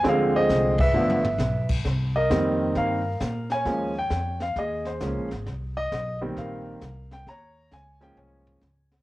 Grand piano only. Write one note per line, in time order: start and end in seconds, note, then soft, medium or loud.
0.03 0.73 D3 medium
0.03 0.73 F3 medium
0.03 0.73 G#3 medium
0.03 0.73 C4 medium
0.08 0.35 G#4 medium
0.08 0.35 C5 medium
0.08 0.37 F5 medium
0.36 0.92 G#4 medium
0.36 0.92 C5 medium
0.36 0.77 D#5 loud
0.80 1.66 B4 medium
0.80 1.66 E5 medium
0.94 1.21 D3 medium
0.94 1.21 F3 medium
0.94 1.21 A3 medium
0.94 1.21 B3 medium
2.16 2.76 A#4 medium
2.16 2.72 D#5 medium
2.30 2.99 D#3 medium
2.30 2.99 G3 medium
2.30 2.99 A#3 medium
2.30 2.99 C4 medium
2.77 3.63 A#4 medium
2.77 3.47 F5 medium
3.52 4.38 C#5 medium
3.52 3.97 G#5 medium
3.66 3.92 F3 medium
3.66 3.92 G#3 medium
3.66 3.92 A#3 soft
3.66 3.92 C#4 medium
3.98 4.43 G5 medium
4.42 4.57 F5 medium
4.58 5.43 G#4 medium
4.58 4.87 D#5 medium
4.87 5.28 C5 medium
5.02 5.28 F3 medium
5.02 5.28 G#3 soft
5.02 5.28 A#3 medium
5.02 5.28 C#4 medium
5.77 6.18 D#5 loud
6.21 6.78 D#3 medium
6.21 6.78 G3 medium
6.21 6.79 A#3 medium
6.21 6.79 C4 medium
6.38 7.24 A#4 medium
6.38 7.14 F5 medium
7.13 7.28 G5 medium
7.29 8.14 C#5 medium
7.29 7.74 A#5 loud
7.74 8.03 G#5 medium
8.01 8.58 F3 medium
8.01 8.59 G#3 medium
8.01 8.59 A#3 medium
8.01 8.59 C#4 medium
8.01 8.18 G5 medium
8.18 9.03 C#5 medium
8.18 8.88 G#5 medium